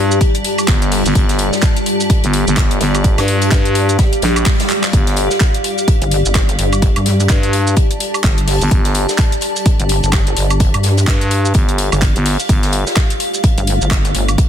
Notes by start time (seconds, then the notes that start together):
Already playing: G2 G3 G4 D5 F5 A5
0.11 shaker
0.21 kick, closed hi-hat, shaker
0.35 closed hi-hat, shaker
0.45 closed hi-hat, open hi-hat
0.58 closed hi-hat, high woodblock, shaker
0.68 G1, kick, snare, clap, closed hi-hat, shaker
0.82 closed hi-hat, shaker
0.92 snare, open hi-hat
1.06 G1, closed hi-hat, shaker
1.15 G1, kick, closed hi-hat, shaker
1.29 snare, closed hi-hat, shaker
1.39 closed hi-hat, open hi-hat
1.52 snare, shaker
1.62 kick, snare, clap, closed hi-hat, shaker
1.77 closed hi-hat, shaker
1.86 closed hi-hat, open hi-hat
2.00 closed hi-hat, shaker
2.10 kick, closed hi-hat, shaker
2.24 G1, closed hi-hat, shaker
2.33 closed hi-hat, open hi-hat
2.47 G1, shaker
2.57 kick, snare, clap, closed hi-hat, high woodblock, shaker
2.71 closed hi-hat, shaker
2.81 G1, snare, closed hi-hat, open hi-hat
2.92 F5, closed hi-hat, high woodblock, shaker
3.04 kick, closed hi-hat, shaker
3.18 G2, snare, closed hi-hat, high woodblock, shaker
3.28 open hi-hat
3.42 closed hi-hat, shaker
3.52 G2, kick, snare, clap, closed hi-hat, shaker
3.65 closed hi-hat, shaker
3.75 closed hi-hat, open hi-hat
3.89 closed hi-hat, shaker
3.99 kick, snare, closed hi-hat, swell, shaker
4.13 closed hi-hat, shaker
4.22 A#1, snare, closed hi-hat, open hi-hat
4.36 closed hi-hat, high woodblock, shaker
4.46 kick, snare, clap, closed hi-hat, open hi-hat, shaker
4.60 snare, closed hi-hat, shaker
4.70 clap, open hi-hat
4.83 snare, clap, closed hi-hat, open hi-hat, shaker
4.93 G1 D5, kick, closed hi-hat, shaker
5.07 snare, closed hi-hat, shaker
5.16 closed hi-hat, open hi-hat
5.30 snare, shaker
5.40 kick, snare, clap, closed hi-hat, shaker
5.54 closed hi-hat, shaker
5.64 closed hi-hat, open hi-hat
5.78 closed hi-hat, shaker
5.88 kick, closed hi-hat, shaker
6.02 G1, closed hi-hat, shaker
6.11 closed hi-hat, open hi-hat
6.25 G1, shaker
6.35 kick, snare, clap, closed hi-hat, high woodblock, shaker
6.49 closed hi-hat, shaker
6.59 G1, closed hi-hat, open hi-hat
6.70 A5, closed hi-hat, high woodblock, shaker
6.82 kick, closed hi-hat, shaker
6.96 G2, closed hi-hat, high woodblock, shaker
7.05 snare, closed hi-hat, open hi-hat
7.20 closed hi-hat, shaker
7.29 G2, kick, snare, clap, closed hi-hat, shaker
7.43 closed hi-hat, shaker
7.53 closed hi-hat, open hi-hat
7.67 shaker
7.76 kick, closed hi-hat, shaker
7.91 closed hi-hat, shaker
8.00 closed hi-hat, open hi-hat
8.14 closed hi-hat, high woodblock, shaker
8.24 G1, kick, snare, clap, closed hi-hat, shaker
8.38 closed hi-hat, shaker
8.48 snare, open hi-hat
8.62 G1, closed hi-hat, shaker
8.71 G1, kick, closed hi-hat, shaker
8.85 snare, closed hi-hat, shaker
8.95 closed hi-hat, open hi-hat
9.09 snare, shaker
9.18 kick, snare, clap, closed hi-hat, shaker
9.32 closed hi-hat, shaker
9.41 closed hi-hat, open hi-hat
9.56 closed hi-hat, shaker
9.66 kick, closed hi-hat, shaker
9.80 G1, closed hi-hat, shaker
9.89 closed hi-hat, open hi-hat
10.03 G1, shaker
10.13 kick, snare, clap, closed hi-hat, high woodblock, shaker
10.27 closed hi-hat, shaker
10.37 G1, closed hi-hat, open hi-hat
10.48 F5, closed hi-hat, high woodblock, shaker
10.60 kick, closed hi-hat, shaker
10.74 G2, closed hi-hat, high woodblock, shaker
10.83 snare, closed hi-hat, open hi-hat
10.97 closed hi-hat, shaker
11.07 G2, kick, snare, clap, closed hi-hat, shaker
11.21 closed hi-hat, shaker
11.31 closed hi-hat, open hi-hat
11.45 shaker
11.54 G1, kick, closed hi-hat, shaker
11.69 closed hi-hat, shaker
11.78 closed hi-hat, open hi-hat
11.92 G1, closed hi-hat, high woodblock, shaker
12.02 kick, snare, clap, closed hi-hat, shaker
12.16 G1, closed hi-hat, shaker
12.25 snare, open hi-hat
12.40 closed hi-hat, shaker
12.49 G1 A4, kick, closed hi-hat, shaker
12.63 snare, closed hi-hat, shaker
12.72 closed hi-hat, open hi-hat
12.87 snare, shaker
12.96 kick, snare, clap, closed hi-hat, shaker
13.10 closed hi-hat, shaker
13.20 closed hi-hat, open hi-hat
13.33 closed hi-hat, shaker
13.44 kick, closed hi-hat, shaker
13.58 G1, closed hi-hat, shaker
13.67 closed hi-hat, open hi-hat
13.81 G1, shaker
13.91 kick, snare, clap, closed hi-hat, high woodblock, shaker
14.05 closed hi-hat, shaker
14.15 G1, closed hi-hat, open hi-hat
14.28 closed hi-hat, high woodblock, shaker
14.38 kick, closed hi-hat, shaker